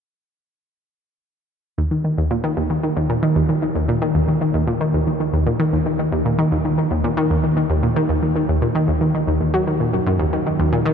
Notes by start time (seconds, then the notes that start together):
1.78 D#2
1.91 D#3
2.04 D#3
2.18 D#2
2.31 A#2
2.44 D#3
2.57 D#2
2.70 D#3
2.83 D#3
2.97 D#2
3.09 A#2
3.23 D#3
3.36 D#2
3.49 D#3
3.62 D#3
3.75 D#2
3.88 A#2
4.02 D#3
4.15 D#2
4.28 D#3
4.41 D#3
4.54 D#2
4.67 A#2
4.81 D#3
4.94 D#2
5.07 D#3
5.20 D#3
5.33 D#2
5.47 A#2
5.60 D#3
5.73 D#2
5.86 D#3
5.99 D#3
6.12 D#2
6.25 A#2
6.39 D#3
6.52 D#2
6.65 D#3
6.78 D#3
6.91 D#2
7.04 A#2
7.17 D#3
7.30 D#2
7.44 D#3
7.57 D#3
7.70 D#2
7.83 A#2
7.96 D#3
8.09 D#2
8.23 D#3
8.36 D#3
8.49 D#2
8.62 A#2
8.75 D#3
8.88 D#2
9.01 D#3
9.14 D#3
9.27 D#2
9.41 D#2
9.54 F#3
9.67 D#3
9.80 A#2
9.93 F#2
10.06 F#2
10.20 D#2
10.33 D#3
10.46 D#3
10.59 D#2
10.72 A#2
10.86 D#3